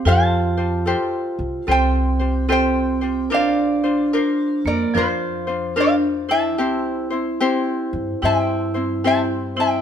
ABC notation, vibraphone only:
X:1
M:4/4
L:1/8
Q:"Swing" 1/4=73
K:F
V:1 name="Vibraphone"
F4 C2 C2 | D3 B, F,2 D E- | E4 E2 E E |]